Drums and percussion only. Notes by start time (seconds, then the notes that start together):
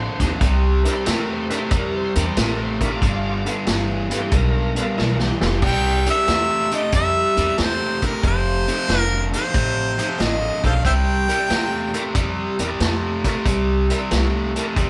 0.20 kick, snare, closed hi-hat
0.41 kick, closed hi-hat
0.85 closed hi-hat
1.06 snare, closed hi-hat
1.50 closed hi-hat
1.71 kick, closed hi-hat
2.15 closed hi-hat
2.37 snare, closed hi-hat
2.81 kick, closed hi-hat
3.02 kick, closed hi-hat
3.46 closed hi-hat
3.67 snare, closed hi-hat
4.11 closed hi-hat
4.32 kick, closed hi-hat
4.76 closed hi-hat
4.98 snare
5.19 snare
5.41 snare
5.62 kick, crash
6.06 closed hi-hat
6.28 snare, closed hi-hat
6.71 closed hi-hat
6.92 kick, closed hi-hat
7.37 closed hi-hat
7.58 snare, closed hi-hat
8.02 kick, closed hi-hat
8.23 kick, closed hi-hat
8.68 closed hi-hat
8.89 snare, closed hi-hat
9.33 closed hi-hat
9.54 kick, closed hi-hat
9.99 closed hi-hat
10.20 snare, closed hi-hat
10.64 kick, closed hi-hat
10.85 kick, closed hi-hat
11.29 closed hi-hat
11.50 snare, closed hi-hat
11.94 closed hi-hat
12.15 kick, closed hi-hat
12.59 closed hi-hat
12.80 snare, closed hi-hat
13.24 kick, snare, closed hi-hat
13.46 kick, closed hi-hat
13.90 closed hi-hat
14.11 snare, closed hi-hat
14.56 closed hi-hat
14.76 kick, closed hi-hat